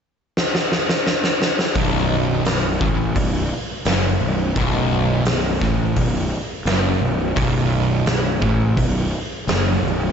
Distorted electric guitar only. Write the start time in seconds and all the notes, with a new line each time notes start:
1.76 B1
2.46 B1
2.81 A2
3.16 B1
3.87 F#2
4.22 B1
4.57 B1
5.26 B1
5.61 A2
5.97 B1
6.67 F#2
7.02 B1
7.35 B1
8.08 B1
8.41 A2
8.77 B1
9.48 F#2
9.83 B1